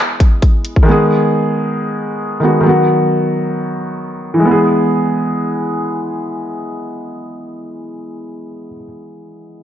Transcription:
Already playing: E3 G#3 B3 G#4
0.20 kick, closed hi-hat
0.42 kick, closed hi-hat
0.65 closed hi-hat
0.76 kick
0.83 D#3 G#3
0.88 B3 G#4
2.40 D#3 G#3 B3
2.44 F#4
2.60 D#3 F#3
2.66 B3 F#4
4.34 E3
4.40 G#3
4.45 B3
4.51 G#4

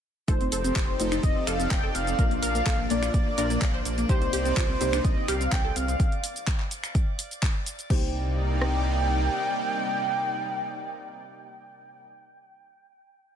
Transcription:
0.28 F1 F3 A3 C4 D#4 F4 G4 A4 C5 D5 D6, kick, closed hi-hat, shaker
0.41 C4, closed hi-hat
0.52 F1 A4 C5, open hi-hat, shaker
0.64 C4, closed hi-hat, shaker
0.76 F1 G4, kick, clap, closed hi-hat, shaker
0.88 C4
1.00 F1 A3 C4 D#4 F4 C5, open hi-hat, shaker
1.12 D#4, finger snap, closed hi-hat, shaker
1.23 F1 C4 D#5, kick, closed hi-hat, shaker
1.36 C4
1.47 F1 A4 F5, finger snap, open hi-hat, shaker
1.60 C4, closed hi-hat, shaker
1.71 F1 C4 G5, kick, clap, closed hi-hat, shaker
1.83 A4
1.95 F1 C4 F5, open hi-hat, shaker
2.07 C4, closed hi-hat, shaker
2.19 A#1 A#2 A#3 D4 F4 A#4 F5, kick, closed hi-hat, shaker
2.31 A#3, closed hi-hat
2.42 A#1 A#4 F5, open hi-hat, shaker
2.55 A#3, closed hi-hat, shaker
2.66 A#1 A4, kick, clap, closed hi-hat, shaker
2.79 A#3
2.90 A#1 A#2 A#3 D4 F4 D5, open hi-hat, shaker
3.02 F4, finger snap, closed hi-hat, shaker
3.14 A#1 A#3 D5, kick, closed hi-hat, shaker
3.26 A#3
3.38 A#1 A#2 A#3 D4 F4 A#4 D5, open hi-hat, shaker
3.50 A#3, closed hi-hat, shaker
3.62 A#1, kick, clap, closed hi-hat, shaker
3.74 C5
3.85 A#1 A#3, open hi-hat, shaker
3.98 A#3, closed hi-hat, shaker
4.09 C2 C3 G3 A#3 D#4 G4 C5 D5, kick, closed hi-hat, shaker
4.22 C4, closed hi-hat
4.33 C2 G4 C5, open hi-hat, shaker
4.45 C4, closed hi-hat, shaker
4.57 C2 F4, kick, clap, closed hi-hat, shaker
4.69 C4
4.81 C2 C3 A#3 C4 D#4 G4 C5, open hi-hat, shaker
4.93 D4, finger snap, closed hi-hat, shaker
5.04 C2 C4 D#5, kick, closed hi-hat, shaker
5.17 C4
5.28 C2 G4 F5, finger snap, open hi-hat, shaker
5.41 C4, closed hi-hat, shaker
5.52 C2 G5, kick, clap, closed hi-hat, shaker
5.64 A4
5.76 C2 C4 F5, open hi-hat, shaker
5.88 C4, closed hi-hat, shaker
6.00 kick, closed hi-hat, shaker
6.12 closed hi-hat
6.24 open hi-hat, shaker
6.36 closed hi-hat, shaker
6.47 kick, clap, closed hi-hat, shaker
6.60 clap
6.71 open hi-hat, shaker
6.84 finger snap, closed hi-hat, shaker
6.95 kick, closed hi-hat, shaker
7.19 open hi-hat, shaker
7.31 closed hi-hat, shaker
7.42 kick, clap, closed hi-hat, shaker
7.66 open hi-hat, shaker
7.79 closed hi-hat, shaker
7.90 C2 C3 G3 A#3 D#4 G4 C5 D5 G5, kick, crash
8.61 cross-stick

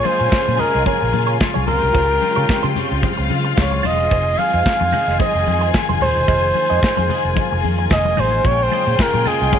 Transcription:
Already playing: C#3 G#3 A#3 F4 G#4 G#5
0.03 F4 G#4 C5 D#5, open hi-hat, muted conga, high conga
0.19 A#2 F4 G#4 C#5, closed hi-hat
0.32 kick, snare, closed hi-hat
0.46 A#2, muted clean electric guitar stroke, high conga
0.57 F4 G#4 A#4 D#5, open hi-hat, muted conga, low conga
0.72 C2 F4 G#4 D#5, closed hi-hat
0.84 F4 G#4 A#4 C#5, kick, closed hi-hat, high conga
1.00 A#1, muted clean electric guitar stroke
1.12 A#2, muted clean electric guitar stroke, open hi-hat, muted conga, high conga
1.27 F4 G#4 C#5, closed hi-hat
1.39 muted clean electric guitar stroke, kick, snare, closed hi-hat, muted conga
1.54 C2 F4 G#4 C#5, high conga
1.66 C#2 C#3 C4 F4 G4 G#4 A#4 C5 G5, open hi-hat, high conga, low conga
1.82 C2, muted clean electric guitar stroke, closed hi-hat
1.93 C#2 F4 G#4 C5, kick, closed hi-hat, muted conga
2.09 muted clean electric guitar stroke
2.21 muted clean electric guitar stroke, open hi-hat, high conga
2.36 C#3 F4 G#4 C#5, closed hi-hat
2.48 muted clean electric guitar stroke, muted fingered electric bass stroke, kick, snare, closed hi-hat, muted conga
2.63 C#3 F4 G#4 C5, high conga
2.75 F4 G#4 C#5, open hi-hat, low conga
2.91 C#2, closed hi-hat
3.02 F4 F5, muted clean electric guitar stroke, kick, closed hi-hat, high conga
3.17 C#2, muted clean electric guitar stroke
3.30 C#3, open hi-hat, muted conga, high conga
3.44 muted clean electric guitar stroke, closed hi-hat
3.57 C#2, muted clean electric guitar stroke, kick, snare, closed hi-hat
3.61 C#5
3.71 muted clean electric guitar stroke, high conga
3.83 E1 F4 G#4 C5 D#5, open hi-hat, high conga, low conga
3.99 F4 G#4 C5, closed hi-hat
4.10 F1 D#3 C4 D#4 G#4 C5 G#5, kick, closed hi-hat
4.38 D#4 G#4 D#5 F5, open hi-hat, high conga
4.53 F2 D#4 G#4 C5, closed hi-hat
4.66 kick, snare, closed hi-hat
4.81 F2, muted clean electric guitar stroke, high conga
4.92 D#4 G#4 D#5, open hi-hat, muted conga, low conga
5.07 F1 D#4 G#4 D#5, snare, closed hi-hat
5.19 D#4 G#4 C5 D#5, kick, closed hi-hat, muted conga, high conga
5.35 F1
5.47 F2, muted clean electric guitar stroke, open hi-hat, muted conga, high conga
5.61 D#4 G#4 C5, closed hi-hat
5.73 muted clean electric guitar stroke, kick, snare, closed hi-hat
5.89 F1 D#4 G#4 C5, high conga
6.00 D#1 D#4 G#4 C5, open hi-hat, high conga, low conga
6.16 E1, muted clean electric guitar stroke, closed hi-hat
6.27 F1 A#3 D#4 G#4 C5, kick, closed hi-hat, muted conga
6.43 muted clean electric guitar stroke
6.55 muted clean electric guitar stroke, open hi-hat, muted conga, high conga
6.70 F2 D#4 G#4 D#5, closed hi-hat
6.83 muted fingered electric bass stroke, kick, snare, closed hi-hat
6.97 F2 D#4 G#4 C5, high conga
7.09 D#4 G#4 D#5, open hi-hat, low conga
7.25 F1, closed hi-hat
7.36 muted clean electric guitar stroke, kick, closed hi-hat, muted conga, high conga
7.52 F1, muted clean electric guitar stroke
7.64 F2, open hi-hat, high conga
7.79 muted clean electric guitar stroke, closed hi-hat
7.89 F1 D#5, muted clean electric guitar stroke, kick, snare, closed hi-hat, muted conga
8.05 muted clean electric guitar stroke, high conga
8.17 A1 D#4 G#4 C5, open hi-hat, muted conga, high conga, low conga
8.32 D#4 G#4 C5, closed hi-hat
8.43 A#1 C#3 G#3 F4 G#4 C#5 G5, kick, closed hi-hat, muted conga
8.63 C5
8.71 F4 G#4 D#5, open hi-hat, high conga
8.87 A#2 F4 G#4 C#5, closed hi-hat
8.98 A#4, muted clean electric guitar stroke, muted fingered electric bass stroke, kick, snare, closed hi-hat, muted conga
9.13 A#2, muted clean electric guitar stroke, high conga
9.25 F4 G#4 D#5, open hi-hat, muted conga, low conga
9.41 C2 F4 G#4 D#5, closed hi-hat
9.52 F4 G#4 C#5, kick, closed hi-hat, muted conga, high conga

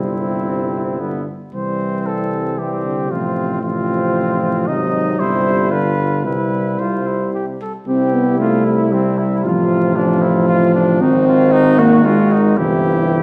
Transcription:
Already playing: G1 C3 G3 C4 E4
1.00 D3 G3 B3
1.53 C2 E3 G3 C4 C5
2.06 A4
2.58 E3 G3 C4 G4
2.85 D3
3.10 A1 C3 F3 C4 F4
3.62 C3 F3 C4 F4
4.67 G#1 C3 F#3 D#4 D#5
5.19 G1 C3 G3 E4 C5
5.71 D3 G3 F4 B4
6.24 C2 C3 G3 E4 B4
6.79 C3 G3 F4 C5
7.07 E4
7.34 G4
7.61 A4
7.86 C2 C3 C4 E4 G4
8.13 B3
8.39 A3 F4
8.66 E4
8.91 G3 C4
9.18 E4
9.44 A1 F3 F4
9.96 F3 D4
10.22 E4
10.48 F4
10.75 D4
11.01 G#1 D#3 C4 D#4 F#4
11.28 F4
11.52 D#4
11.79 A#3 F#4
12.05 G#3 F4
12.32 D#4
12.57 G1 C3 E3 E4 G4

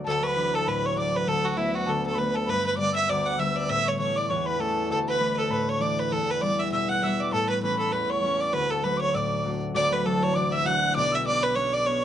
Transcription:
Already playing: F#3 A3 B3 D4
0.04 D2 A4 A5
0.23 B4 C#6
0.27 B5
0.36 E3 F#3 D4
0.54 A4 A5
0.66 A2 B4 B5
0.86 C#5 C#6
0.95 E3 F#3 D4 D5 D6
1.15 B4 B5
1.27 D2 A4 A5
1.45 F#4 F#5
1.54 D3 A3 E4 E5
1.59 B3
1.74 F#4 F#5
1.86 D2 A4 A5
2.04 A4 A5
2.12 D3 B5 C#6
2.17 A3 B3 B4
2.34 A4 A5
2.46 G2 B4 B5
2.63 B4 B5
2.76 D3 G3 B3 D5 D6
2.92 E5 E6
3.07 D2 D5 E6
3.11 D6
3.26 F#5
3.38 D3 G3 B3 E5 E6
3.56 D5
3.68 A2 E5 E6
3.85 C#5 C#6
3.97 E3 A3 C#4 C#5 C#6
4.16 D5 D6
4.28 E2 C#5 C#6
4.46 B4 B5
4.58 E3 A3 C#4 A4 A5
4.89 D2 A4 A5
5.08 B4 B5
5.20 E3 A3 D4
5.35 A4 B4
5.39 A5
5.50 A2 B4 B5
5.69 C#5 C#6
5.80 E3 A3 D4 D5 D6
5.99 B4 B5
6.11 E2 A4 A5
6.30 B4 B5
6.41 E3 G3 B3 D5 D6
6.59 E5
6.72 B2 E5 E6
6.89 F#5 F#6
7.00 E3 G3 B3 E5 F#5
7.04 E6
7.20 D5 D6
7.32 A2 A4 A5
7.49 B4 B5
7.62 E3 A3 C#4 B4 B5
7.79 A4
7.92 E2 B4 B5
8.10 C#5 C#6
8.23 E3 A3 C#4
8.40 D5 D6
8.53 D2 B4 B5
8.70 A4 A5
8.84 F#3 A3 D4 B4 B5
8.97 C#6 D6
9.01 C#5
9.14 A2 D5 D6 E6
9.44 F#3 A3 D4
9.75 D1 D2 D5 D6
9.92 B4 B5
10.04 E3 F#3 D4 A4 A5
10.23 C#5
10.34 E3 F#3 D4 D5 D6
10.52 E5 E6
10.65 E3 F#3 D4 F#5 F#6
10.95 B1 B2 D5 D6
11.12 E5 E6
11.26 B3 C#4 D4 D5 D6
11.42 B4 B5
11.55 B3 C#4 D4 C#5 C#6
11.72 D5 D6
11.86 B3 C#4 D4 C#5 C#6

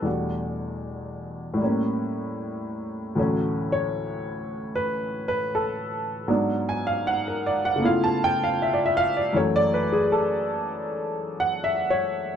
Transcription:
0.02 E2 B2 G3 A3 D4
0.06 F#4
1.54 A2 G3
1.61 A#3 C#4
3.15 D2 A2 E3 F#3 A3
3.19 C#4
3.72 C#5
4.75 B4
5.28 B4
5.55 A4
6.28 G#2 F#3 B3 D4
6.69 G#5
6.87 F5
7.07 F#5
7.28 A#4
7.46 D5
7.65 F#5
7.76 C#3 A3
7.82 B3 E4 F5
7.87 F4
8.04 A5
8.24 G5
8.44 F5
8.62 E5
8.73 D5
8.86 E5
8.97 F5
9.17 D5
9.33 F#2 E3 F#3 C#5
9.38 A3
9.56 D5
9.74 B4
9.93 G#4
10.12 A4
11.40 F#5
11.64 E5
11.90 C#5

